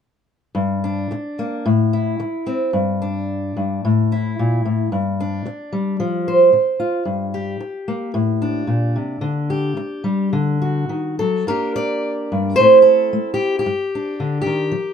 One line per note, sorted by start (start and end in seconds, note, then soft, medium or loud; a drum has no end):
0.55 1.10 G2 medium
0.84 1.64 D4 soft
1.11 muted steel-string acoustic guitar stroke medium
1.39 1.65 A#3 soft
1.66 2.18 A2 medium
1.93 2.70 E4 soft
2.20 muted steel-string acoustic guitar stroke soft
2.47 2.70 C4 soft
2.73 3.55 G2 medium
3.02 3.84 D4 soft
3.57 3.83 G2 soft
3.85 4.38 A2 medium
4.12 4.89 E4 soft
4.39 4.65 A#2 medium
4.65 4.92 A2 soft
4.92 5.44 G2 medium
5.20 6.00 D4 medium
5.46 muted steel-string acoustic guitar stroke medium
5.72 5.96 G3 soft
6.00 6.52 F3 medium
6.28 7.03 C5 medium
6.53 muted steel-string acoustic guitar stroke medium
6.80 7.02 F4 medium
7.05 7.59 G2 medium
7.34 8.11 G4 medium
7.60 muted steel-string acoustic guitar stroke medium
7.88 8.11 A#3 medium
8.14 8.67 A2 medium
8.42 10.61 D4 soft
8.67 8.95 A#2 medium
8.96 9.21 C3 soft
9.21 9.76 D3 medium
9.50 10.33 G4 medium
9.77 muted steel-string acoustic guitar stroke medium
10.04 10.29 G3 soft
10.33 10.89 D3 medium
10.62 11.19 F#4 soft
10.89 11.18 D#3 soft
11.19 11.47 F#3 soft
11.19 11.47 A4 medium
11.47 11.97 G2 medium
11.47 12.55 A#3 soft
11.47 12.55 D4 soft
11.47 12.55 G4 soft
11.47 11.75 A#4 medium
11.76 12.55 D5 medium
12.32 12.58 G2 medium
12.56 13.06 A2 medium
12.56 13.12 A3 soft
12.56 12.82 C5 loud
12.60 13.62 C4 soft
12.60 13.63 E4 soft
12.82 13.33 A4 medium
13.13 13.60 A3 medium
13.34 13.58 G4 medium
13.59 14.40 G4 medium
13.66 14.13 G2 medium
13.95 14.73 D4 soft
14.20 14.45 D3 medium
14.41 14.93 G4 medium
14.46 14.72 D#3 medium
14.72 14.93 F3 medium